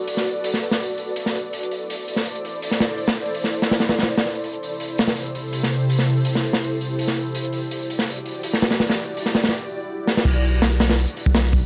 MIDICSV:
0, 0, Header, 1, 4, 480
1, 0, Start_track
1, 0, Key_signature, 1, "minor"
1, 0, Tempo, 363636
1, 100, Time_signature, 4, 2, 24, 8
1, 15390, End_track
2, 0, Start_track
2, 0, Title_t, "Ambient pad"
2, 0, Program_c, 0, 92
2, 0, Note_on_c, 0, 66, 86
2, 0, Note_on_c, 0, 69, 77
2, 0, Note_on_c, 0, 71, 78
2, 0, Note_on_c, 0, 74, 96
2, 1991, Note_off_c, 0, 69, 0
2, 1992, Note_off_c, 0, 66, 0
2, 1992, Note_off_c, 0, 71, 0
2, 1992, Note_off_c, 0, 74, 0
2, 2019, Note_on_c, 0, 72, 79
2, 2020, Note_on_c, 0, 64, 84
2, 2020, Note_on_c, 0, 74, 95
2, 2022, Note_on_c, 0, 69, 81
2, 5832, Note_off_c, 0, 64, 0
2, 5832, Note_off_c, 0, 72, 0
2, 5832, Note_off_c, 0, 74, 0
2, 5833, Note_off_c, 0, 69, 0
2, 5859, Note_on_c, 0, 67, 77
2, 5860, Note_on_c, 0, 69, 77
2, 5860, Note_on_c, 0, 72, 93
2, 5861, Note_on_c, 0, 48, 85
2, 5861, Note_on_c, 0, 64, 78
2, 9672, Note_off_c, 0, 67, 0
2, 9672, Note_off_c, 0, 69, 0
2, 9672, Note_off_c, 0, 72, 0
2, 9673, Note_off_c, 0, 48, 0
2, 9673, Note_off_c, 0, 64, 0
2, 9698, Note_on_c, 0, 64, 86
2, 9699, Note_on_c, 0, 66, 79
2, 9699, Note_on_c, 0, 67, 78
2, 9700, Note_on_c, 0, 74, 94
2, 13511, Note_off_c, 0, 64, 0
2, 13512, Note_off_c, 0, 66, 0
2, 13512, Note_off_c, 0, 67, 0
2, 13512, Note_off_c, 0, 74, 0
2, 15390, End_track
3, 0, Start_track
3, 0, Title_t, "808-style bass"
3, 0, Program_c, 1, 38
3, 13532, Note_on_c, 1, 35, 97
3, 14600, Note_off_c, 1, 35, 0
3, 14867, Note_on_c, 1, 35, 97
3, 15390, Note_off_c, 1, 35, 0
3, 15390, End_track
4, 0, Start_track
4, 0, Title_t, "Drums"
4, 100, Note_on_c, 9, 46, 89
4, 225, Note_on_c, 9, 38, 36
4, 232, Note_off_c, 9, 46, 0
4, 335, Note_on_c, 9, 46, 57
4, 357, Note_off_c, 9, 38, 0
4, 467, Note_off_c, 9, 46, 0
4, 582, Note_on_c, 9, 46, 87
4, 709, Note_on_c, 9, 38, 36
4, 714, Note_off_c, 9, 46, 0
4, 807, Note_on_c, 9, 46, 63
4, 841, Note_off_c, 9, 38, 0
4, 939, Note_off_c, 9, 46, 0
4, 943, Note_on_c, 9, 38, 53
4, 1056, Note_on_c, 9, 46, 82
4, 1075, Note_off_c, 9, 38, 0
4, 1188, Note_off_c, 9, 46, 0
4, 1293, Note_on_c, 9, 46, 61
4, 1425, Note_off_c, 9, 46, 0
4, 1532, Note_on_c, 9, 46, 83
4, 1664, Note_off_c, 9, 46, 0
4, 1665, Note_on_c, 9, 38, 40
4, 1782, Note_on_c, 9, 46, 68
4, 1797, Note_off_c, 9, 38, 0
4, 1914, Note_off_c, 9, 46, 0
4, 2019, Note_on_c, 9, 46, 79
4, 2151, Note_off_c, 9, 46, 0
4, 2151, Note_on_c, 9, 42, 39
4, 2261, Note_on_c, 9, 46, 58
4, 2283, Note_off_c, 9, 42, 0
4, 2393, Note_off_c, 9, 46, 0
4, 2506, Note_on_c, 9, 46, 79
4, 2638, Note_off_c, 9, 46, 0
4, 2744, Note_on_c, 9, 46, 61
4, 2855, Note_on_c, 9, 38, 38
4, 2876, Note_off_c, 9, 46, 0
4, 2984, Note_on_c, 9, 46, 79
4, 2987, Note_off_c, 9, 38, 0
4, 3103, Note_on_c, 9, 42, 42
4, 3116, Note_off_c, 9, 46, 0
4, 3232, Note_on_c, 9, 46, 67
4, 3235, Note_off_c, 9, 42, 0
4, 3364, Note_off_c, 9, 46, 0
4, 3463, Note_on_c, 9, 46, 84
4, 3583, Note_on_c, 9, 38, 42
4, 3595, Note_off_c, 9, 46, 0
4, 3702, Note_off_c, 9, 38, 0
4, 3702, Note_on_c, 9, 38, 103
4, 3707, Note_on_c, 9, 46, 73
4, 3834, Note_off_c, 9, 38, 0
4, 3839, Note_off_c, 9, 46, 0
4, 3931, Note_on_c, 9, 46, 64
4, 4054, Note_off_c, 9, 46, 0
4, 4054, Note_on_c, 9, 46, 73
4, 4062, Note_on_c, 9, 38, 89
4, 4186, Note_off_c, 9, 46, 0
4, 4194, Note_off_c, 9, 38, 0
4, 4297, Note_on_c, 9, 46, 58
4, 4417, Note_off_c, 9, 46, 0
4, 4417, Note_on_c, 9, 46, 87
4, 4541, Note_on_c, 9, 38, 41
4, 4549, Note_off_c, 9, 46, 0
4, 4657, Note_on_c, 9, 46, 61
4, 4673, Note_off_c, 9, 38, 0
4, 4780, Note_on_c, 9, 38, 56
4, 4789, Note_off_c, 9, 46, 0
4, 4899, Note_on_c, 9, 46, 74
4, 4902, Note_off_c, 9, 38, 0
4, 4902, Note_on_c, 9, 38, 91
4, 5016, Note_off_c, 9, 38, 0
4, 5016, Note_on_c, 9, 38, 94
4, 5021, Note_off_c, 9, 46, 0
4, 5021, Note_on_c, 9, 46, 77
4, 5137, Note_off_c, 9, 38, 0
4, 5137, Note_on_c, 9, 38, 97
4, 5142, Note_off_c, 9, 46, 0
4, 5142, Note_on_c, 9, 46, 68
4, 5262, Note_off_c, 9, 46, 0
4, 5262, Note_on_c, 9, 46, 60
4, 5263, Note_off_c, 9, 38, 0
4, 5263, Note_on_c, 9, 38, 76
4, 5315, Note_off_c, 9, 46, 0
4, 5315, Note_on_c, 9, 46, 61
4, 5317, Note_off_c, 9, 38, 0
4, 5317, Note_on_c, 9, 38, 86
4, 5386, Note_off_c, 9, 46, 0
4, 5386, Note_on_c, 9, 46, 61
4, 5449, Note_off_c, 9, 38, 0
4, 5511, Note_on_c, 9, 38, 92
4, 5516, Note_off_c, 9, 46, 0
4, 5516, Note_on_c, 9, 46, 75
4, 5620, Note_off_c, 9, 38, 0
4, 5620, Note_on_c, 9, 38, 34
4, 5648, Note_off_c, 9, 46, 0
4, 5743, Note_on_c, 9, 46, 52
4, 5752, Note_off_c, 9, 38, 0
4, 5860, Note_off_c, 9, 46, 0
4, 5860, Note_on_c, 9, 46, 82
4, 5983, Note_on_c, 9, 42, 39
4, 5992, Note_off_c, 9, 46, 0
4, 6110, Note_on_c, 9, 46, 59
4, 6115, Note_off_c, 9, 42, 0
4, 6242, Note_off_c, 9, 46, 0
4, 6337, Note_on_c, 9, 46, 75
4, 6469, Note_off_c, 9, 46, 0
4, 6578, Note_on_c, 9, 46, 76
4, 6588, Note_on_c, 9, 38, 102
4, 6699, Note_off_c, 9, 38, 0
4, 6699, Note_on_c, 9, 38, 89
4, 6704, Note_off_c, 9, 46, 0
4, 6704, Note_on_c, 9, 46, 68
4, 6818, Note_off_c, 9, 46, 0
4, 6818, Note_on_c, 9, 46, 85
4, 6831, Note_off_c, 9, 38, 0
4, 6940, Note_on_c, 9, 42, 43
4, 6950, Note_off_c, 9, 46, 0
4, 7061, Note_on_c, 9, 46, 69
4, 7072, Note_off_c, 9, 42, 0
4, 7193, Note_off_c, 9, 46, 0
4, 7294, Note_on_c, 9, 46, 91
4, 7426, Note_off_c, 9, 46, 0
4, 7436, Note_on_c, 9, 38, 42
4, 7542, Note_on_c, 9, 46, 64
4, 7568, Note_off_c, 9, 38, 0
4, 7674, Note_off_c, 9, 46, 0
4, 7784, Note_on_c, 9, 46, 89
4, 7902, Note_on_c, 9, 38, 36
4, 7916, Note_off_c, 9, 46, 0
4, 8020, Note_on_c, 9, 46, 66
4, 8034, Note_off_c, 9, 38, 0
4, 8152, Note_off_c, 9, 46, 0
4, 8247, Note_on_c, 9, 46, 86
4, 8379, Note_off_c, 9, 46, 0
4, 8387, Note_on_c, 9, 38, 42
4, 8504, Note_on_c, 9, 46, 68
4, 8519, Note_off_c, 9, 38, 0
4, 8624, Note_on_c, 9, 38, 59
4, 8636, Note_off_c, 9, 46, 0
4, 8739, Note_on_c, 9, 46, 86
4, 8756, Note_off_c, 9, 38, 0
4, 8871, Note_off_c, 9, 46, 0
4, 8989, Note_on_c, 9, 46, 65
4, 9121, Note_off_c, 9, 46, 0
4, 9225, Note_on_c, 9, 46, 77
4, 9341, Note_on_c, 9, 38, 34
4, 9357, Note_off_c, 9, 46, 0
4, 9461, Note_on_c, 9, 46, 64
4, 9473, Note_off_c, 9, 38, 0
4, 9593, Note_off_c, 9, 46, 0
4, 9696, Note_on_c, 9, 46, 90
4, 9827, Note_on_c, 9, 42, 43
4, 9828, Note_off_c, 9, 46, 0
4, 9933, Note_on_c, 9, 46, 60
4, 9959, Note_off_c, 9, 42, 0
4, 10065, Note_off_c, 9, 46, 0
4, 10181, Note_on_c, 9, 46, 77
4, 10313, Note_off_c, 9, 46, 0
4, 10427, Note_on_c, 9, 46, 67
4, 10545, Note_on_c, 9, 38, 39
4, 10559, Note_off_c, 9, 46, 0
4, 10662, Note_on_c, 9, 46, 89
4, 10677, Note_off_c, 9, 38, 0
4, 10785, Note_on_c, 9, 42, 39
4, 10794, Note_off_c, 9, 46, 0
4, 10899, Note_on_c, 9, 46, 65
4, 10917, Note_off_c, 9, 42, 0
4, 11031, Note_off_c, 9, 46, 0
4, 11132, Note_on_c, 9, 46, 76
4, 11264, Note_off_c, 9, 46, 0
4, 11266, Note_on_c, 9, 38, 46
4, 11378, Note_on_c, 9, 46, 80
4, 11383, Note_off_c, 9, 38, 0
4, 11383, Note_on_c, 9, 38, 102
4, 11492, Note_off_c, 9, 38, 0
4, 11492, Note_on_c, 9, 38, 94
4, 11507, Note_off_c, 9, 46, 0
4, 11507, Note_on_c, 9, 46, 78
4, 11615, Note_off_c, 9, 38, 0
4, 11615, Note_on_c, 9, 38, 94
4, 11619, Note_off_c, 9, 46, 0
4, 11619, Note_on_c, 9, 46, 81
4, 11741, Note_off_c, 9, 38, 0
4, 11741, Note_on_c, 9, 38, 88
4, 11748, Note_off_c, 9, 46, 0
4, 11748, Note_on_c, 9, 46, 73
4, 11860, Note_off_c, 9, 46, 0
4, 11860, Note_on_c, 9, 46, 61
4, 11873, Note_off_c, 9, 38, 0
4, 11992, Note_off_c, 9, 46, 0
4, 12103, Note_on_c, 9, 46, 87
4, 12220, Note_on_c, 9, 38, 41
4, 12235, Note_off_c, 9, 46, 0
4, 12339, Note_off_c, 9, 38, 0
4, 12339, Note_on_c, 9, 38, 89
4, 12341, Note_on_c, 9, 46, 69
4, 12456, Note_off_c, 9, 38, 0
4, 12456, Note_on_c, 9, 38, 85
4, 12464, Note_off_c, 9, 46, 0
4, 12464, Note_on_c, 9, 46, 57
4, 12516, Note_off_c, 9, 46, 0
4, 12516, Note_on_c, 9, 46, 66
4, 12520, Note_off_c, 9, 38, 0
4, 12520, Note_on_c, 9, 38, 76
4, 12648, Note_off_c, 9, 46, 0
4, 12652, Note_off_c, 9, 38, 0
4, 13299, Note_on_c, 9, 38, 61
4, 13430, Note_off_c, 9, 38, 0
4, 13430, Note_on_c, 9, 38, 69
4, 13533, Note_on_c, 9, 36, 111
4, 13536, Note_on_c, 9, 49, 95
4, 13544, Note_on_c, 9, 46, 90
4, 13562, Note_off_c, 9, 38, 0
4, 13665, Note_off_c, 9, 36, 0
4, 13666, Note_on_c, 9, 42, 47
4, 13668, Note_off_c, 9, 49, 0
4, 13676, Note_off_c, 9, 46, 0
4, 13781, Note_on_c, 9, 46, 62
4, 13798, Note_off_c, 9, 42, 0
4, 13913, Note_off_c, 9, 46, 0
4, 14018, Note_on_c, 9, 38, 123
4, 14021, Note_on_c, 9, 46, 85
4, 14150, Note_off_c, 9, 38, 0
4, 14153, Note_off_c, 9, 46, 0
4, 14256, Note_on_c, 9, 38, 109
4, 14265, Note_on_c, 9, 46, 82
4, 14377, Note_off_c, 9, 46, 0
4, 14377, Note_on_c, 9, 46, 76
4, 14381, Note_off_c, 9, 38, 0
4, 14381, Note_on_c, 9, 38, 111
4, 14493, Note_off_c, 9, 46, 0
4, 14493, Note_on_c, 9, 46, 82
4, 14513, Note_off_c, 9, 38, 0
4, 14622, Note_on_c, 9, 42, 48
4, 14625, Note_off_c, 9, 46, 0
4, 14741, Note_on_c, 9, 46, 69
4, 14754, Note_off_c, 9, 42, 0
4, 14867, Note_on_c, 9, 36, 99
4, 14873, Note_off_c, 9, 46, 0
4, 14976, Note_on_c, 9, 38, 125
4, 14980, Note_on_c, 9, 46, 90
4, 14999, Note_off_c, 9, 36, 0
4, 15089, Note_off_c, 9, 38, 0
4, 15089, Note_on_c, 9, 38, 45
4, 15112, Note_off_c, 9, 46, 0
4, 15221, Note_off_c, 9, 38, 0
4, 15221, Note_on_c, 9, 36, 93
4, 15221, Note_on_c, 9, 46, 66
4, 15353, Note_off_c, 9, 36, 0
4, 15353, Note_off_c, 9, 46, 0
4, 15390, End_track
0, 0, End_of_file